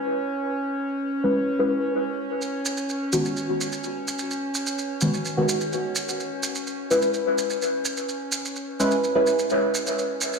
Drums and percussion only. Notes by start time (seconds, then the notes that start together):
2.42 maracas
2.65 maracas
2.77 maracas
2.89 maracas
3.13 maracas
3.25 maracas
3.37 maracas
3.61 maracas
3.72 maracas
3.84 maracas
4.08 maracas
4.19 maracas
4.31 maracas
4.55 maracas
4.66 maracas
4.78 maracas
5.01 maracas
5.14 maracas
5.25 maracas
5.49 maracas
5.61 maracas
5.73 maracas
5.95 maracas
6.09 maracas
6.20 maracas
6.43 maracas
6.55 maracas
6.67 maracas
6.91 maracas
7.02 maracas
7.14 maracas
7.38 maracas
7.50 maracas
7.62 maracas
7.85 maracas
7.97 maracas
8.09 maracas
8.32 maracas
8.45 maracas
8.56 maracas
8.80 maracas
8.91 maracas
9.04 maracas
9.27 maracas
9.39 maracas
9.50 maracas
9.75 maracas
9.87 maracas
9.99 maracas
10.21 maracas
10.33 maracas